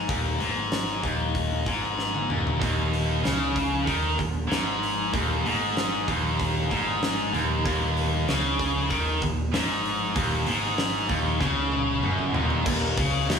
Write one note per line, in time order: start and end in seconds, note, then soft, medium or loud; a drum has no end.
0.08 0.38 D#1 medium
0.08 0.39 D#2 loud
0.08 kick loud
0.08 open hi-hat medium
0.39 0.99 G#1 medium
0.39 1.02 G#2 loud
0.39 open hi-hat soft
0.72 snare loud
0.72 open hi-hat medium
1.03 1.63 D#1 medium
1.03 1.65 D#2 medium
1.03 kick medium
1.03 open hi-hat soft
1.35 kick medium
1.35 open hi-hat medium
1.66 2.26 G#1 medium
1.66 2.29 G#2 medium
1.66 kick medium
1.66 open hi-hat soft
1.99 snare medium
2.14 high tom medium
2.29 2.59 D#1 medium
2.29 2.59 D#2 medium
2.29 mid tom medium
2.47 floor tom medium
2.60 3.21 D#1 medium
2.60 3.23 D#2 loud
2.60 kick medium
2.60 open hi-hat medium
2.93 open hi-hat soft
3.23 3.82 C#2 medium
3.23 3.86 C#3 medium
3.23 snare loud
3.23 open hi-hat medium
3.56 kick medium
3.56 open hi-hat medium
3.86 4.17 D#2 medium
3.86 4.17 D#3 medium
3.86 kick medium
3.86 open hi-hat medium
4.17 4.48 D#1 medium
4.17 4.43 D#2 medium
4.17 kick medium
4.17 open hi-hat soft
4.48 5.09 G#1 medium
4.48 5.11 G#2 medium
4.48 snare loud
4.48 open hi-hat medium
4.83 open hi-hat medium
5.13 5.43 D#1 medium
5.13 5.43 D#2 loud
5.13 kick loud
5.13 open hi-hat medium
5.44 6.03 G#1 medium
5.44 6.06 G#2 medium
5.44 open hi-hat soft
5.77 snare loud
5.77 open hi-hat medium
6.07 6.67 D#1 medium
6.07 6.69 D#2 loud
6.07 kick medium
6.07 open hi-hat medium
6.40 kick medium
6.40 open hi-hat medium
6.70 7.30 G#1 medium
6.70 7.32 G#2 medium
6.70 kick medium
6.70 open hi-hat soft
7.03 snare loud
7.03 open hi-hat medium
7.32 7.62 D#1 medium
7.32 7.63 D#2 medium
7.32 open hi-hat soft
7.65 8.24 D#1 medium
7.65 8.27 D#2 medium
7.65 kick loud
7.65 open hi-hat medium
7.97 open hi-hat soft
8.28 8.86 C#2 loud
8.28 8.89 C#3 loud
8.28 snare loud
8.28 open hi-hat medium
8.59 kick medium
8.59 open hi-hat soft
8.90 9.20 D#2 medium
8.90 9.21 D#3 loud
8.90 kick medium
8.90 open hi-hat medium
9.22 9.51 D#1 medium
9.22 9.47 D#2 medium
9.22 kick medium
9.22 open hi-hat soft
9.53 10.12 G#1 medium
9.53 10.15 G#2 loud
9.53 snare loud
9.53 open hi-hat medium
9.85 open hi-hat medium
10.15 10.45 D#1 medium
10.15 10.46 D#2 loud
10.15 kick loud
10.15 open hi-hat medium
10.47 11.05 G#1 medium
10.47 11.09 G#2 medium
10.47 open hi-hat medium
10.78 snare loud
10.78 open hi-hat medium
11.08 11.39 D#1 medium
11.08 11.39 D#2 medium
11.08 kick medium
11.08 open hi-hat soft
11.40 12.00 C#2 medium
11.40 12.02 C#3 medium
11.40 kick medium
11.40 snare medium
11.72 mid tom medium
12.03 12.32 F#1 loud
12.03 12.34 F#2 medium
12.03 mid tom medium
12.19 mid tom medium
12.33 12.63 D#1 medium
12.33 12.65 D#2 loud
12.33 floor tom medium
12.50 floor tom medium
12.66 12.95 D#1 medium
12.66 12.97 D#2 loud
12.66 kick loud
12.66 crash loud
12.97 13.27 C#2 medium
12.97 13.28 C#3 loud
12.97 kick loud
12.97 open hi-hat medium
13.28 13.39 D#1 loud
13.28 13.39 D#2 loud
13.28 snare loud
13.28 open hi-hat medium